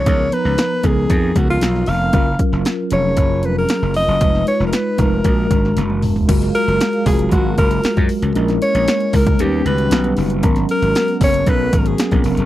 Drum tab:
CC |----------------|----------------|----------------|x---------------|
HH |x-x-x-x-x-x-x-o-|x-x-x-x-x-x-x-o-|x-x-x-x-x-x-x-o-|xxxxxxoxx-xxxxox|
SD |---oo-------oo--|---oo-------oo--|-o-oo------oo---|-o--o-------o---|
T1 |----------------|----------------|-------------o--|----------------|
T2 |----------------|----------------|--------------o-|----------------|
FT |----------------|----------------|---------------o|----------------|
BD |o-----o-o-o-----|o-o-----o-------|o-----o-o-o-----|o-----o-o-o--o--|

CC |----------------|----------------|
HH |xxxxxxoxx-xxxxox|xxxxxxoxx-xxxxox|
SD |-o--o-------o---|-o--o-------o---|
T1 |----------------|----------------|
T2 |----------------|----------------|
FT |----------------|----------------|
BD |------oo--------|o-----o-o-o--o--|